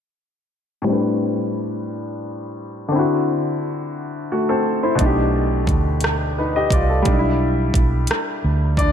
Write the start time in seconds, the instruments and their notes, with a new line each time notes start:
0.82 grand piano A2 G3
0.87 grand piano C4 D4
0.92 grand piano B4
2.88 grand piano D3 C4
2.95 grand piano E4 F#4
4.32 grand piano A3 F#4
4.49 grand piano C4 A4
4.83 grand piano E4 C5
4.95 grand piano B2 A3, kick, closed hi-hat
5.00 fingered electric bass B1, grand piano D4 D#4
5.06 grand piano G4
5.67 fingered electric bass D2, kick, closed hi-hat
6.01 cross-stick, closed hi-hat
6.38 grand piano D#4 B4
6.56 grand piano G4 D#5
6.71 fingered electric bass C2, grand piano F4 D5, kick, closed hi-hat
6.90 grand piano A4
7.02 grand piano G3, kick, closed hi-hat
7.06 fingered electric bass B1, grand piano D4
7.13 grand piano D#4
7.19 grand piano E4
7.74 fingered electric bass B1, kick, closed hi-hat
8.07 muted fingered electric bass stroke, cross-stick, closed hi-hat
8.44 fingered electric bass D2
8.77 grand piano D4 D5, kick, closed hi-hat